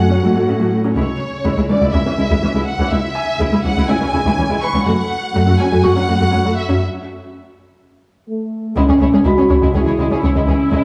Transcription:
Already playing: F#2 F#5 G#5 C#6
0.11 F#3 C#4
0.23 G#2 F#3 A3 F#4
0.35 A3 F#4
0.48 A2 F#3 A3 C#4
0.60 F#3 A3 F#4
0.84 F#3 C#4
0.96 C#2 C#3 G#3 E4 C#5
1.45 C#2 C#3 G#3 E4
1.57 C#2 G#3 E4
1.69 C#2 E3 G#3 C#4 D5
1.81 C#2 C#3 G#3 E4
1.93 C#2 G#3 C#4 E4 E5
2.06 C#2 E3 G#3 C#4
2.18 C#2 C#3 G#3 E4
2.30 C#2 E3 G#3 E4
2.42 C#2 E3 C#4
2.55 C#2 C#3 G#3 E4
2.66 F#5
2.79 C#2 E3 G#3 C#4
2.91 C#2 C#3 G#3 E4 E5
3.15 G#5
3.40 C#2 C#3 G#3 E4
3.53 C#2 G#3 E4
3.65 C#2 E3 G#3 C#4 F#5
3.77 C#2 C#3 G#3 E4
3.89 C#2 G#3 C#4 E4 G#5
4.01 C#2 E3 G#3 C#4
4.13 C#2 C#3 G#3 E4
4.25 C#2 E3 G#3 E4
4.38 C#2 E3 C#4
4.49 C#2 C#3 G#3 E4
4.62 B4 B5 C#6
4.74 C#2 E3 G#3 C#4
4.86 F#2 F#3 A3 F#4 F#5
5.35 F#2 F#3 A3 F#4
5.48 F#2 A3 C#4 F#4
5.60 F#2 F#3 C#4 G#5
5.72 F#2 F#3 A3 F#4
5.84 F#2 A3 F#4 F#5 C#6
5.96 F#2 F#3 C#4
6.08 F#2 F#3 A3 F#4
6.21 F#2 A3 F#4
6.33 F#2 F#3 A3 C#4
6.45 F#2 F#3 A3 F#4
6.57 E5
6.69 F#2 F#3 C#4
8.28 A3
8.77 C#2 C#3 G#3 C#4 E4
8.89 C#2 C#4 G#4
9.01 C#2 G#3 E4 C#5
9.14 C#2 G#3 C#4 G#4
9.25 C#2 C#3 G#3 E4 F#4 B5
9.38 C#2 C#4 G#4
9.50 C#2 C#4 E4 C#5
9.62 C#2 C#3 G#3 E4
9.74 C#2 G#3 C#4 E4 G#4
9.86 C#2 E3 E4 C#5
9.99 C#2 C#3 G#3 E4
10.11 C#2 C#4 G#4
10.23 C#2 G#3 C#4 E4 C#5
10.35 C#2 C#3 G#3 E4
10.47 C#2 E3 C#4 G#4
10.72 C#2 C#3 G#3 C#4 E4

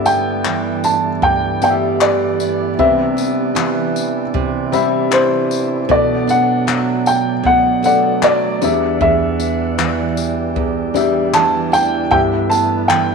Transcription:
Already playing: G2 D3 G3 A3 B3 E4 G4 D5 E5
0.06 B3 G5, tambourine
0.45 E3, clap
0.84 A5, tambourine
1.22 G2 G5, kick
1.62 G3 B3 G4 D5 G5, tambourine
1.70 E5
2.00 E3 D5, clap
2.40 B3, tambourine
2.79 C3 C4 D4 B4 E5, kick
3.17 B3, tambourine
3.55 E3, clap
3.96 tambourine
4.34 C3, kick
4.72 G3 C4 E5 B5, tambourine
5.11 E3 C5, clap
5.51 tambourine
5.89 B2 F#3 A3 B3 A4 D5, kick
6.27 D4 F#5, tambourine
6.67 F#3, clap
7.06 G5, tambourine
7.44 B2 F#5, kick
7.83 A3 B3 A4 F#5, tambourine
7.87 D5
8.22 F#3 D5, clap
8.61 E2 E3 G3 D4 G4 D5 E5 F#5, tambourine
9.01 E2 E5, kick
9.40 D4, tambourine
9.78 E3, clap
10.17 G4, tambourine
10.56 E2, kick
10.94 G3 D4 G4 E5, tambourine
11.33 E3 A5, clap
11.72 D4 G5, tambourine
12.11 G2 G3 A3 B3 E4 G4 B4 E5 G5, kick
12.50 B3 A5, tambourine
12.88 E3 G5, clap

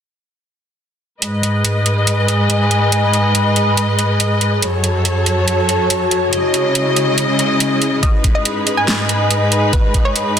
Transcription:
1.22 G#2 G#3 G#4 B4 D#5, closed hi-hat
1.39 D#5
1.43 closed hi-hat
1.65 closed hi-hat
1.77 G#5
1.86 closed hi-hat
2.07 closed hi-hat
2.17 B5
2.28 closed hi-hat
2.50 closed hi-hat
2.71 closed hi-hat
2.92 closed hi-hat
3.13 closed hi-hat
3.35 closed hi-hat
3.56 closed hi-hat
3.77 closed hi-hat
3.99 closed hi-hat
4.20 closed hi-hat
4.41 closed hi-hat
4.62 F#2 F#3 F#4 A4 C#5, closed hi-hat
4.79 C#5
4.84 closed hi-hat
4.91 A5
5.05 closed hi-hat
5.26 closed hi-hat
5.48 closed hi-hat
5.69 closed hi-hat
5.90 closed hi-hat
6.11 closed hi-hat
6.32 C#3 G#3 C#4 E4 D#5, closed hi-hat
6.54 closed hi-hat
6.69 G#4
6.75 closed hi-hat
6.96 closed hi-hat
7.06 E4
7.18 closed hi-hat
7.39 closed hi-hat
7.60 closed hi-hat
7.82 closed hi-hat
8.03 G#2 D#4 B4 D#5, kick, closed hi-hat
8.21 D#5, kick, closed hi-hat
8.35 D#5
8.45 closed hi-hat
8.56 G#5
8.67 closed hi-hat
8.77 G#5
8.87 B5, snare, closed hi-hat
9.09 closed hi-hat
9.30 closed hi-hat
9.52 closed hi-hat
9.73 B4, kick, closed hi-hat
9.94 kick, closed hi-hat
10.05 C#5
10.16 closed hi-hat

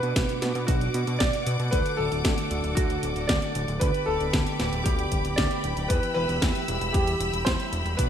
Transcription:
Already playing: B4 D5 F#5 D6
0.03 B2 B3 D4 F#4 B4, closed hi-hat
0.16 B1, kick, snare, closed hi-hat
0.29 closed hi-hat
0.42 B2 B3 D4 F#4 B4, snare, closed hi-hat
0.55 B2, closed hi-hat
0.67 B1 F#4, kick, closed hi-hat
0.81 closed hi-hat
0.94 B2, closed hi-hat
1.07 B2, closed hi-hat
1.19 B1 D5, kick, snare, closed hi-hat
1.33 closed hi-hat
1.47 B2, closed hi-hat
1.60 B2, closed hi-hat
1.71 D2 D3 A3 D4 F#4 A4 B4, kick, closed hi-hat
1.86 closed hi-hat
1.97 D1 A4
2.12 D1 D3 A3 D4 F#4 A4, closed hi-hat
2.25 D2, kick, snare, closed hi-hat
2.38 closed hi-hat
2.51 D1 D3 A3 D4 F#4 A4, closed hi-hat
2.64 D1, closed hi-hat
2.75 D2 F#4, kick, closed hi-hat
2.90 closed hi-hat
3.03 D1, closed hi-hat
3.16 D1, closed hi-hat
3.27 D2 D5, kick, snare, closed hi-hat
3.42 closed hi-hat
3.55 D1, closed hi-hat
3.68 D1, closed hi-hat
3.80 D2 D3 B3 D4 G4 B4 G5 B5 D6, kick, closed hi-hat
3.94 closed hi-hat
4.06 D1 A4
4.20 D1 D3 B3 D4 G4 B4, closed hi-hat
4.33 D2, kick, snare, closed hi-hat
4.47 closed hi-hat
4.60 D1 D3 B3 D4 G4 B4, snare, closed hi-hat
4.73 D1, closed hi-hat
4.84 D2 G4, kick, closed hi-hat
4.99 closed hi-hat
5.12 D1, kick, closed hi-hat
5.25 D1, closed hi-hat
5.36 D2 D5, kick, snare, closed hi-hat
5.51 closed hi-hat
5.64 D1, closed hi-hat
5.77 D1, closed hi-hat
5.88 E2 E3 B3 E4 G4 B4 E5 E6, kick, closed hi-hat
6.03 closed hi-hat
6.14 E1 B4
6.29 E1 E3 B3 E4 G4 B4, closed hi-hat
6.42 E2, kick, snare, closed hi-hat
6.55 closed hi-hat
6.68 E1 E3 G3 E4 G4, closed hi-hat
6.81 E1, closed hi-hat
6.93 E2 G4, kick, closed hi-hat
7.07 closed hi-hat
7.20 E1, closed hi-hat
7.33 E1, closed hi-hat
7.45 E2 C5, kick, snare, closed hi-hat
7.60 closed hi-hat
7.72 E1, closed hi-hat
7.86 E1, closed hi-hat
7.97 B1 B2 B3 D4 F#4 B4 D5 F#5 D6, kick, closed hi-hat

